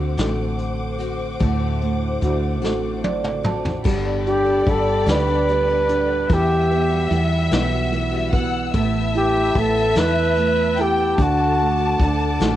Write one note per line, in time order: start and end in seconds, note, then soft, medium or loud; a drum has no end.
0.00 0.15 D2 medium
0.00 0.17 D3 medium
0.00 1.36 D3 medium
0.00 0.17 A3 medium
0.00 0.95 A3 soft
0.00 0.17 C4 medium
0.00 0.16 F#4 medium
0.00 1.37 F#4 medium
0.00 3.81 C5 medium
0.00 3.81 F#5 medium
0.00 3.81 D6 medium
0.17 1.36 A1 medium
0.17 1.02 D3 medium
0.17 1.00 A3 medium
0.17 0.98 C4 medium
0.17 0.97 F#4 medium
0.17 1.77 A4 medium
0.17 snare medium
0.17 closed hi-hat medium
0.58 closed hi-hat medium
0.98 1.39 A3 soft
0.98 1.39 C4 soft
0.98 1.39 F#4 medium
0.98 closed hi-hat medium
1.39 2.18 D2 medium
1.39 3.82 A2 medium
1.39 2.21 D3 medium
1.39 2.22 A3 medium
1.39 2.21 C4 medium
1.39 2.22 F#4 medium
1.39 kick medium
1.39 closed hi-hat medium
1.82 3.41 A3 medium
1.82 closed hi-hat soft
2.21 2.62 D2 medium
2.21 2.62 D3 medium
2.21 2.62 A3 medium
2.21 2.61 C4 medium
2.21 2.61 F#4 medium
2.21 3.82 F#4 medium
2.21 closed hi-hat medium
2.62 3.81 A1 medium
2.62 3.48 D3 medium
2.62 3.45 A3 medium
2.62 3.43 C4 medium
2.62 3.42 F#4 medium
2.62 3.82 A4 medium
2.62 snare medium
3.04 3.42 D5 medium
3.04 high tom medium
3.24 mid tom medium
3.43 3.84 A3 soft
3.43 3.85 C4 medium
3.43 3.84 F#4 medium
3.43 3.83 A5 medium
3.43 mid tom medium
3.65 floor tom medium
3.84 4.63 G1 medium
3.84 4.05 G3 medium
3.84 4.67 G3 medium
3.84 4.05 B3 medium
3.84 4.04 D4 medium
3.84 6.27 A4 medium
3.84 4.03 A4 medium
3.84 6.26 D5 medium
3.84 6.27 G5 medium
3.84 6.27 B5 medium
3.84 kick loud
3.84 crash medium
4.04 4.46 B3 soft
4.04 4.45 D4 soft
4.04 4.44 A4 medium
4.26 5.06 D4 medium
4.26 4.71 G4 medium
4.26 closed hi-hat soft
4.45 4.65 B3 soft
4.45 4.66 D4 medium
4.45 4.66 A4 medium
4.66 5.05 G1 medium
4.66 5.05 G3 medium
4.66 5.47 G3 medium
4.66 5.06 B3 medium
4.66 5.06 D4 medium
4.66 5.06 A4 medium
4.66 5.09 A4 medium
4.66 kick medium
4.66 closed hi-hat medium
5.06 6.25 D2 medium
5.06 5.27 G3 medium
5.06 5.27 B3 medium
5.06 5.27 D4 medium
5.06 5.87 D4 medium
5.06 5.26 A4 medium
5.06 snare loud
5.06 closed hi-hat medium
5.10 6.35 B4 loud
5.27 5.69 B3 soft
5.27 5.68 D4 medium
5.27 5.67 A4 medium
5.48 6.27 G3 medium
5.48 closed hi-hat medium
5.68 5.88 B3 soft
5.68 5.88 D4 medium
5.68 5.89 A4 medium
5.88 6.29 G3 medium
5.88 6.29 B3 medium
5.88 6.28 D4 medium
5.88 6.30 D4 medium
5.88 6.30 A4 medium
5.88 closed hi-hat medium
6.29 6.50 E2 medium
6.29 7.07 E2 loud
6.29 6.50 B2 medium
6.29 7.10 E3 medium
6.29 6.50 E3 medium
6.29 6.50 G3 medium
6.29 8.72 G3 medium
6.29 6.49 B3 medium
6.29 6.50 F#4 medium
6.29 8.29 E5 loud
6.29 8.72 F#5 medium
6.29 11.15 E6 medium
6.29 kick loud
6.29 closed hi-hat medium
6.33 7.23 G4 medium
6.50 6.90 E3 soft
6.50 6.90 G3 soft
6.50 6.89 B3 medium
6.71 7.51 B3 medium
6.71 closed hi-hat soft
6.90 7.09 E3 soft
6.90 7.10 G3 soft
6.90 7.11 B3 medium
6.90 7.11 F#4 medium
7.10 7.49 E2 medium
7.10 7.50 E3 medium
7.10 7.91 E3 medium
7.10 7.50 G3 medium
7.10 7.51 B3 medium
7.10 7.51 F#4 medium
7.10 closed hi-hat medium
7.51 8.70 B1 medium
7.51 7.72 E2 medium
7.51 7.72 B2 medium
7.51 7.72 E3 medium
7.51 7.72 G3 medium
7.51 7.71 B3 medium
7.51 8.31 B3 medium
7.51 7.70 F#4 medium
7.51 snare loud
7.51 closed hi-hat medium
7.71 8.13 E3 soft
7.71 8.12 G3 soft
7.71 8.11 B3 medium
7.71 8.11 F#4 medium
7.92 8.71 E3 medium
7.92 closed hi-hat medium
8.12 8.31 E3 soft
8.12 8.32 G3 medium
8.12 8.32 B3 medium
8.12 8.33 F#4 medium
8.32 8.73 E3 medium
8.32 8.74 G3 medium
8.32 8.72 B3 medium
8.32 8.73 B3 medium
8.32 8.74 F#4 medium
8.32 8.74 F#5 medium
8.32 kick medium
8.32 closed hi-hat medium
8.74 9.52 A1 loud
8.74 8.94 A2 medium
8.74 8.94 E3 medium
8.74 8.94 A3 medium
8.74 9.55 A3 medium
8.74 8.93 B3 loud
8.74 8.92 E4 loud
8.74 11.16 B4 medium
8.74 10.74 E5 loud
8.74 11.17 A5 medium
8.74 kick loud
8.74 closed hi-hat medium
8.93 9.35 A3 soft
8.93 9.34 B3 soft
8.93 9.33 E4 medium
9.14 9.95 E4 medium
9.14 9.60 G4 medium
9.14 closed hi-hat soft
9.34 9.54 A3 soft
9.34 9.55 B3 medium
9.34 9.55 E4 medium
9.54 9.94 A1 loud
9.54 9.94 E3 medium
9.54 9.95 A3 medium
9.54 10.36 A3 medium
9.54 9.95 B3 medium
9.54 9.95 E4 medium
9.54 kick medium
9.54 closed hi-hat medium
9.59 10.00 A4 loud
9.95 11.14 E2 medium
9.95 10.16 A2 medium
9.95 10.16 E3 medium
9.95 10.16 A3 medium
9.95 10.15 B3 medium
9.95 10.14 E4 medium
9.95 10.77 E4 medium
9.95 10.83 B4 loud
9.95 snare loud
9.95 closed hi-hat medium
10.15 10.57 A3 soft
10.15 10.56 B3 soft
10.15 10.55 E4 medium
10.37 11.16 A3 medium
10.37 closed hi-hat medium
10.56 10.76 A3 soft
10.56 10.77 B3 soft
10.56 10.77 E4 medium
10.77 11.17 E3 medium
10.77 11.17 A3 medium
10.77 11.18 B3 medium
10.77 11.17 E4 medium
10.77 11.19 E4 medium
10.77 11.18 G5 loud
10.77 closed hi-hat medium
10.81 11.24 G4 loud
11.16 11.96 D2 loud
11.16 11.38 D3 medium
11.16 12.56 D3 medium
11.16 11.39 A3 medium
11.16 11.38 D4 medium
11.16 11.37 F#4 medium
11.16 12.56 A4 medium
11.16 12.56 F#5 medium
11.16 12.56 A5 loud
11.16 12.56 D6 medium
11.16 kick loud
11.16 closed hi-hat medium
11.22 12.12 F#4 medium
11.38 11.79 A3 soft
11.38 11.78 D4 medium
11.38 11.77 F#4 medium
11.59 12.39 A3 medium
11.59 closed hi-hat soft
11.78 11.98 A3 soft
11.78 11.99 D4 soft
11.78 11.99 F#4 medium
11.99 12.38 D2 medium
11.99 12.38 D3 medium
11.99 12.39 A3 medium
11.99 12.39 D4 medium
11.99 12.56 D4 medium
11.99 12.39 F#4 medium
11.99 kick medium
11.99 closed hi-hat medium
12.39 12.56 A1 medium
12.39 12.56 D3 medium
12.39 12.56 A3 medium
12.39 12.56 D4 medium
12.39 12.56 F#4 medium
12.39 snare loud
12.39 closed hi-hat medium